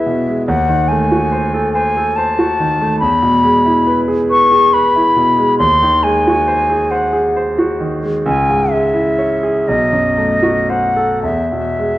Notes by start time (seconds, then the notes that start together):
Already playing: E2 B2 G#3 E4 G#4 B4 E5
0.06 B2
0.27 G#3
0.48 D#2 F#5
0.69 D#3
0.88 A3 G#5
1.12 F#4
1.32 C5
1.54 A4
1.73 C5 G#5
1.97 A4
2.16 C5 A5
2.39 F#4
2.60 D#3
2.81 A3
2.99 E2 B5
3.22 B2
3.44 G#3
3.65 E4
3.86 B4
4.08 G#4
4.30 B4 C#6
4.52 G#4
4.73 B4 B5
4.96 E4
5.16 B2
5.38 G#3
5.59 D#2 C6
5.82 D#3
6.03 G#3 G#5
6.27 F#4
6.47 C5
6.70 G#4
6.91 C5 F#5
7.13 G#4
7.36 C5
7.59 F#4
7.80 D#3
8.03 G#3
8.26 C#2 G#5
8.49 G#2
8.71 G#3 E5
8.94 E4
9.18 C#5
9.43 G#4
9.68 B1 D#5
9.92 F#2
10.17 A3
10.42 F#4
10.69 C5 F#5
10.96 A4
11.23 E2 E5
11.52 B2
11.79 G#3